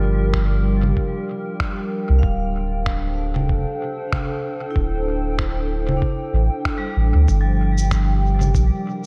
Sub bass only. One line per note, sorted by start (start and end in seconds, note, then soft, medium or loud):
0.00 0.94 G1 loud
2.09 2.21 C2 loud
2.23 3.51 D1 loud
3.49 3.65 F1 medium
4.76 5.99 D1 medium
6.33 6.49 A1 medium
6.96 7.13 A1 medium
7.14 7.27 D2 medium
7.28 8.56 G1 loud
8.55 8.71 A#1 loud